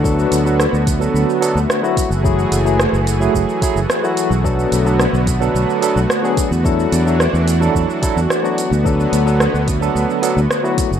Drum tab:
HH |--x---x---x---x-|--x---x---x---x-|--x---x---x---x-|--x---x---x---x-|
SH |xxxxxxxxxxxxxxxx|xxxxxxxxxxxxxxxx|xxxxxxxxxxxxxxxx|xxxxxxxxxxxxxxxx|
SD |----r-------r---|----r-------r---|----r-------r---|----r-------r---|
BD |o-----o-------o-|o-------o-o-----|o-----o-------o-|o-------o-o-----|

HH |--x---x---x---x-|
SH |xxxxxxxxxxxxxxxx|
SD |----r-------r---|
BD |o-----o-------o-|